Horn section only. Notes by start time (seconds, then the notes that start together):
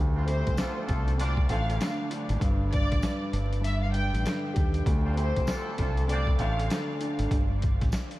0.16 C4 D4 F4
0.27 C4 E4 G4
0.58 D4 F4 A4
0.86 D4 F4 A4
1.20 C4 D4 F4
1.49 F3 A3 D4
5.05 C4 D4 F4
5.16 C4 E4 G4
5.47 D4 F4 A4
5.78 D4 F4 A4
6.11 C4 D4 F4
6.39 F3 A3 D4